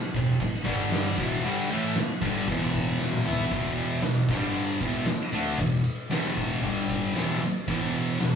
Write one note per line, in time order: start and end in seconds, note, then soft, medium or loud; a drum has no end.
0.14 0.36 E2 medium
0.14 0.36 B2 medium
0.14 kick medium
0.14 crash medium
0.40 muted distorted electric guitar stroke medium
0.40 kick medium
0.40 crash medium
0.55 snare soft
0.64 1.16 G2 loud
0.64 1.17 D3 medium
0.64 1.17 G3 loud
0.64 kick medium
0.64 crash medium
0.92 snare loud
0.92 tambourine medium
0.92 crash medium
1.18 1.43 E2 medium
1.18 1.44 B2 medium
1.18 1.44 E3 medium
1.18 kick loud
1.18 crash medium
1.44 1.69 G2 medium
1.44 1.70 D3 medium
1.44 1.70 G3 loud
1.44 crash medium
1.70 1.96 A2 loud
1.70 1.96 E3 loud
1.70 1.96 A3 loud
1.70 crash medium
1.96 snare loud
1.96 tambourine medium
1.96 crash medium
2.21 2.47 G2 medium
2.21 2.47 D3 loud
2.21 2.47 G3 loud
2.21 kick medium
2.21 crash medium
2.48 3.25 E2 loud
2.48 3.25 B2 loud
2.48 3.24 E3 loud
2.48 kick loud
2.48 crash medium
2.62 snare soft
2.73 kick medium
2.73 crash medium
2.99 snare medium
2.99 tambourine medium
3.13 high tom medium
3.26 3.51 E3 medium
3.26 3.51 B3 medium
3.26 3.52 E4 loud
3.26 mid tom medium
3.39 floor tom medium
3.51 4.02 E2 loud
3.51 4.03 B2 loud
3.51 4.03 E3 loud
3.51 kick loud
3.51 ride medium
3.51 tambourine soft
3.64 tambourine medium
3.77 ride medium
3.77 tambourine medium
4.02 4.24 E2 medium
4.02 4.24 B2 medium
4.02 snare loud
4.02 ride loud
4.02 tambourine medium
4.29 4.81 G2 medium
4.29 4.81 D3 loud
4.29 4.81 G3 medium
4.29 kick medium
4.29 snare soft
4.29 ride medium
4.29 tambourine soft
4.54 ride medium
4.68 tambourine soft
4.81 5.07 E2 medium
4.81 5.07 B2 medium
4.81 5.07 E3 loud
4.81 kick medium
4.81 ride medium
4.81 tambourine medium
4.95 tambourine soft
5.06 muted distorted electric guitar stroke medium
5.06 snare loud
5.06 ride medium
5.06 tambourine medium
5.19 tambourine soft
5.31 5.58 D3 loud
5.31 5.59 A3 loud
5.31 5.59 D4 medium
5.31 ride medium
5.31 tambourine medium
5.45 tambourine soft
5.57 5.80 E2 medium
5.57 5.81 B2 medium
5.57 kick loud
5.57 ride loud
5.57 tambourine soft
5.71 tambourine medium
5.84 ride medium
5.84 tambourine medium
6.00 tambourine soft
6.10 6.62 E2 loud
6.10 6.63 B2 medium
6.10 6.63 E3 loud
6.10 snare loud
6.10 ride medium
6.10 tambourine medium
6.25 tambourine soft
6.37 kick medium
6.37 ride medium
6.37 tambourine soft
6.62 7.14 G2 medium
6.62 7.15 D3 loud
6.62 7.15 G3 loud
6.62 kick medium
6.62 ride medium
6.78 tambourine soft
6.89 kick medium
6.89 ride medium
6.89 tambourine medium
7.03 tambourine soft
7.14 7.40 E2 medium
7.14 7.41 B2 medium
7.14 7.41 E3 loud
7.14 snare loud
7.14 ride medium
7.14 tambourine medium
7.30 tambourine soft
7.41 muted distorted electric guitar stroke medium
7.41 ride medium
7.41 tambourine medium
7.56 tambourine soft
7.67 8.19 E2 loud
7.67 8.19 B2 loud
7.67 8.20 E3 loud
7.67 kick loud
7.67 ride medium
7.67 tambourine soft
7.81 tambourine medium
7.92 ride medium
7.92 tambourine medium
8.18 8.35 E2 medium
8.18 8.35 B2 medium
8.18 snare loud
8.18 ride medium
8.18 tambourine medium